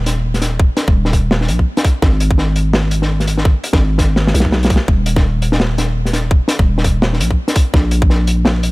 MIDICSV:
0, 0, Header, 1, 3, 480
1, 0, Start_track
1, 0, Tempo, 357143
1, 800, Time_signature, 4, 2, 24, 8
1, 11714, End_track
2, 0, Start_track
2, 0, Title_t, "808-style bass"
2, 0, Program_c, 0, 38
2, 0, Note_on_c, 0, 27, 100
2, 922, Note_off_c, 0, 27, 0
2, 1180, Note_on_c, 0, 27, 98
2, 1998, Note_on_c, 0, 34, 89
2, 2018, Note_off_c, 0, 27, 0
2, 2222, Note_off_c, 0, 34, 0
2, 2720, Note_on_c, 0, 32, 104
2, 4762, Note_off_c, 0, 32, 0
2, 5019, Note_on_c, 0, 32, 92
2, 5826, Note_off_c, 0, 32, 0
2, 5838, Note_on_c, 0, 35, 89
2, 6441, Note_off_c, 0, 35, 0
2, 6560, Note_on_c, 0, 27, 104
2, 8601, Note_off_c, 0, 27, 0
2, 8860, Note_on_c, 0, 27, 96
2, 9677, Note_on_c, 0, 34, 90
2, 9697, Note_off_c, 0, 27, 0
2, 9902, Note_off_c, 0, 34, 0
2, 10398, Note_on_c, 0, 34, 100
2, 11714, Note_off_c, 0, 34, 0
2, 11714, End_track
3, 0, Start_track
3, 0, Title_t, "Drums"
3, 85, Note_on_c, 9, 40, 48
3, 85, Note_on_c, 9, 42, 92
3, 219, Note_off_c, 9, 42, 0
3, 220, Note_off_c, 9, 40, 0
3, 459, Note_on_c, 9, 38, 35
3, 462, Note_on_c, 9, 42, 49
3, 559, Note_on_c, 9, 40, 47
3, 561, Note_off_c, 9, 42, 0
3, 561, Note_on_c, 9, 42, 81
3, 594, Note_off_c, 9, 38, 0
3, 693, Note_off_c, 9, 40, 0
3, 695, Note_off_c, 9, 42, 0
3, 800, Note_on_c, 9, 36, 114
3, 934, Note_off_c, 9, 36, 0
3, 1030, Note_on_c, 9, 42, 74
3, 1031, Note_on_c, 9, 40, 73
3, 1165, Note_off_c, 9, 42, 0
3, 1166, Note_off_c, 9, 40, 0
3, 1179, Note_on_c, 9, 36, 104
3, 1314, Note_off_c, 9, 36, 0
3, 1411, Note_on_c, 9, 40, 52
3, 1519, Note_on_c, 9, 42, 75
3, 1520, Note_on_c, 9, 36, 60
3, 1546, Note_off_c, 9, 40, 0
3, 1654, Note_off_c, 9, 36, 0
3, 1654, Note_off_c, 9, 42, 0
3, 1759, Note_on_c, 9, 38, 106
3, 1893, Note_off_c, 9, 38, 0
3, 1894, Note_on_c, 9, 40, 54
3, 1994, Note_on_c, 9, 42, 85
3, 2029, Note_off_c, 9, 40, 0
3, 2129, Note_off_c, 9, 42, 0
3, 2139, Note_on_c, 9, 36, 60
3, 2274, Note_off_c, 9, 36, 0
3, 2380, Note_on_c, 9, 42, 55
3, 2382, Note_on_c, 9, 40, 82
3, 2480, Note_off_c, 9, 42, 0
3, 2480, Note_on_c, 9, 36, 106
3, 2480, Note_on_c, 9, 42, 74
3, 2516, Note_off_c, 9, 40, 0
3, 2614, Note_off_c, 9, 36, 0
3, 2614, Note_off_c, 9, 42, 0
3, 2718, Note_on_c, 9, 40, 59
3, 2720, Note_on_c, 9, 36, 113
3, 2852, Note_off_c, 9, 40, 0
3, 2855, Note_off_c, 9, 36, 0
3, 2961, Note_on_c, 9, 42, 81
3, 3095, Note_off_c, 9, 42, 0
3, 3099, Note_on_c, 9, 36, 102
3, 3198, Note_on_c, 9, 40, 53
3, 3234, Note_off_c, 9, 36, 0
3, 3332, Note_off_c, 9, 40, 0
3, 3437, Note_on_c, 9, 42, 72
3, 3571, Note_off_c, 9, 42, 0
3, 3675, Note_on_c, 9, 40, 74
3, 3676, Note_on_c, 9, 38, 120
3, 3809, Note_off_c, 9, 40, 0
3, 3810, Note_off_c, 9, 38, 0
3, 3913, Note_on_c, 9, 42, 87
3, 4047, Note_off_c, 9, 42, 0
3, 4060, Note_on_c, 9, 40, 56
3, 4195, Note_off_c, 9, 40, 0
3, 4301, Note_on_c, 9, 38, 37
3, 4307, Note_on_c, 9, 42, 50
3, 4400, Note_off_c, 9, 42, 0
3, 4400, Note_on_c, 9, 42, 72
3, 4436, Note_off_c, 9, 38, 0
3, 4535, Note_off_c, 9, 42, 0
3, 4537, Note_on_c, 9, 40, 55
3, 4639, Note_on_c, 9, 36, 115
3, 4671, Note_off_c, 9, 40, 0
3, 4773, Note_off_c, 9, 36, 0
3, 4887, Note_on_c, 9, 42, 89
3, 5013, Note_on_c, 9, 40, 83
3, 5019, Note_on_c, 9, 36, 101
3, 5021, Note_off_c, 9, 42, 0
3, 5148, Note_off_c, 9, 40, 0
3, 5153, Note_off_c, 9, 36, 0
3, 5350, Note_on_c, 9, 40, 57
3, 5359, Note_on_c, 9, 36, 62
3, 5364, Note_on_c, 9, 42, 79
3, 5484, Note_off_c, 9, 40, 0
3, 5493, Note_off_c, 9, 36, 0
3, 5498, Note_off_c, 9, 42, 0
3, 5593, Note_on_c, 9, 38, 68
3, 5728, Note_off_c, 9, 38, 0
3, 5745, Note_on_c, 9, 38, 76
3, 5843, Note_on_c, 9, 42, 97
3, 5879, Note_off_c, 9, 38, 0
3, 5918, Note_on_c, 9, 38, 76
3, 5977, Note_off_c, 9, 42, 0
3, 5979, Note_on_c, 9, 36, 60
3, 6052, Note_off_c, 9, 38, 0
3, 6081, Note_on_c, 9, 38, 89
3, 6114, Note_off_c, 9, 36, 0
3, 6215, Note_off_c, 9, 38, 0
3, 6220, Note_on_c, 9, 42, 51
3, 6245, Note_on_c, 9, 38, 97
3, 6313, Note_off_c, 9, 42, 0
3, 6313, Note_on_c, 9, 42, 73
3, 6320, Note_on_c, 9, 36, 104
3, 6380, Note_off_c, 9, 38, 0
3, 6397, Note_on_c, 9, 38, 106
3, 6447, Note_off_c, 9, 42, 0
3, 6454, Note_off_c, 9, 36, 0
3, 6531, Note_off_c, 9, 38, 0
3, 6560, Note_on_c, 9, 36, 118
3, 6695, Note_off_c, 9, 36, 0
3, 6800, Note_on_c, 9, 42, 91
3, 6935, Note_off_c, 9, 42, 0
3, 6941, Note_on_c, 9, 36, 104
3, 6942, Note_on_c, 9, 40, 50
3, 7075, Note_off_c, 9, 36, 0
3, 7077, Note_off_c, 9, 40, 0
3, 7284, Note_on_c, 9, 42, 74
3, 7418, Note_off_c, 9, 42, 0
3, 7420, Note_on_c, 9, 40, 88
3, 7524, Note_on_c, 9, 38, 123
3, 7555, Note_off_c, 9, 40, 0
3, 7658, Note_off_c, 9, 38, 0
3, 7770, Note_on_c, 9, 42, 87
3, 7772, Note_on_c, 9, 40, 57
3, 7904, Note_off_c, 9, 42, 0
3, 7906, Note_off_c, 9, 40, 0
3, 8138, Note_on_c, 9, 38, 37
3, 8152, Note_on_c, 9, 42, 54
3, 8243, Note_on_c, 9, 40, 52
3, 8245, Note_off_c, 9, 42, 0
3, 8245, Note_on_c, 9, 42, 77
3, 8272, Note_off_c, 9, 38, 0
3, 8377, Note_off_c, 9, 40, 0
3, 8380, Note_off_c, 9, 42, 0
3, 8480, Note_on_c, 9, 36, 125
3, 8614, Note_off_c, 9, 36, 0
3, 8706, Note_on_c, 9, 40, 74
3, 8717, Note_on_c, 9, 42, 92
3, 8841, Note_off_c, 9, 40, 0
3, 8851, Note_off_c, 9, 42, 0
3, 8859, Note_on_c, 9, 36, 111
3, 8994, Note_off_c, 9, 36, 0
3, 9109, Note_on_c, 9, 40, 52
3, 9198, Note_on_c, 9, 42, 88
3, 9199, Note_on_c, 9, 36, 67
3, 9244, Note_off_c, 9, 40, 0
3, 9332, Note_off_c, 9, 42, 0
3, 9334, Note_off_c, 9, 36, 0
3, 9436, Note_on_c, 9, 38, 123
3, 9571, Note_off_c, 9, 38, 0
3, 9585, Note_on_c, 9, 40, 57
3, 9684, Note_on_c, 9, 42, 104
3, 9720, Note_off_c, 9, 40, 0
3, 9818, Note_on_c, 9, 36, 65
3, 9819, Note_off_c, 9, 42, 0
3, 9953, Note_off_c, 9, 36, 0
3, 10050, Note_on_c, 9, 40, 71
3, 10054, Note_on_c, 9, 42, 61
3, 10153, Note_off_c, 9, 42, 0
3, 10153, Note_on_c, 9, 42, 86
3, 10158, Note_on_c, 9, 36, 114
3, 10184, Note_off_c, 9, 40, 0
3, 10287, Note_off_c, 9, 42, 0
3, 10293, Note_off_c, 9, 36, 0
3, 10398, Note_on_c, 9, 36, 127
3, 10408, Note_on_c, 9, 40, 52
3, 10533, Note_off_c, 9, 36, 0
3, 10543, Note_off_c, 9, 40, 0
3, 10633, Note_on_c, 9, 42, 83
3, 10768, Note_off_c, 9, 42, 0
3, 10778, Note_on_c, 9, 36, 110
3, 10884, Note_on_c, 9, 40, 54
3, 10912, Note_off_c, 9, 36, 0
3, 11018, Note_off_c, 9, 40, 0
3, 11119, Note_on_c, 9, 42, 80
3, 11253, Note_off_c, 9, 42, 0
3, 11354, Note_on_c, 9, 40, 76
3, 11363, Note_on_c, 9, 38, 118
3, 11488, Note_off_c, 9, 40, 0
3, 11497, Note_off_c, 9, 38, 0
3, 11600, Note_on_c, 9, 42, 84
3, 11714, Note_off_c, 9, 42, 0
3, 11714, End_track
0, 0, End_of_file